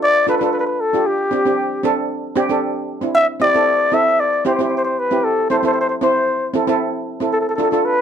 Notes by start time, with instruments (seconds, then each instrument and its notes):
0.03 muted trumpet D5
0.27 steel pan D4 F4 A4, muted trumpet B4
0.38 steel pan D4 F4, muted trumpet B4
0.43 steel pan A4, muted trumpet B4
0.53 muted trumpet B4
0.59 muted trumpet B4
0.67 muted trumpet B4
0.80 muted trumpet A4
0.94 steel pan D4 F4 G4
1.07 muted trumpet G4
1.31 steel pan C4 D4 G4
1.46 steel pan C4 D4 G4
1.83 steel pan C4 D4 A4
2.35 steel pan C4 D4 G4
2.49 steel pan C4 D4 A4
3.01 steel pan C4 D4 E4
3.15 muted trumpet E5
3.40 steel pan C4 E4 G4, muted trumpet D5
3.54 steel pan C4 E4 A4
3.92 steel pan C4 E4 A4, muted trumpet E5
4.20 muted trumpet D5
4.45 steel pan C4 E4 G4, muted trumpet C5
4.55 muted trumpet C5
4.59 steel pan C4 E4 G4
4.63 muted trumpet C5
4.69 muted trumpet C5
4.77 muted trumpet C5
4.84 muted trumpet C5
4.99 muted trumpet B4
5.11 steel pan C4 E4 G4
5.24 muted trumpet A4
5.50 steel pan C4 E4 A4, muted trumpet C5
5.59 muted trumpet C5
5.63 steel pan C4 E4 A4, muted trumpet C5
5.73 muted trumpet C5
5.81 muted trumpet C5
5.89 muted trumpet C5
6.01 steel pan C4 E4 C5, muted trumpet C5
6.54 steel pan C4 E4 A4
6.67 steel pan C4 E4 A4
7.20 steel pan C4 E4 A4
7.33 muted trumpet A4
7.41 muted trumpet A4
7.49 muted trumpet A4
7.56 steel pan D4 F4 A4, muted trumpet A4
7.63 muted trumpet A4
7.71 steel pan D4 F4 A4, muted trumpet A4
7.85 muted trumpet B4